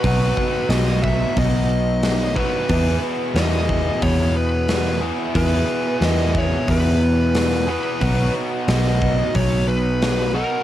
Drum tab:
HH |o-o-o-o-|o-o-o-o-|o-o-o-o-|o-o-o-o-|
SD |--o---o-|--o---o-|--o---o-|--o---o-|
BD |oo-oo--o|o--oo---|o--oo---|o--oo---|